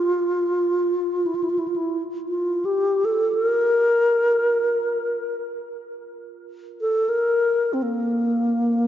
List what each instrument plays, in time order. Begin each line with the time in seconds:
Already playing: bass flute F4, singing bowl F4
1.26 bass flute E4
1.35 bass flute F4
1.43 bass flute E4
1.50 bass flute F4
1.59 bass flute E4
1.68 bass flute F4
1.76 bass flute E4
2.28 bass flute F4
2.65 bass flute G4
3.05 bass flute A4
3.34 bass flute A#4
6.81 bass flute A4
7.09 bass flute A#4
7.73 bass flute C4
7.83 bass flute A#3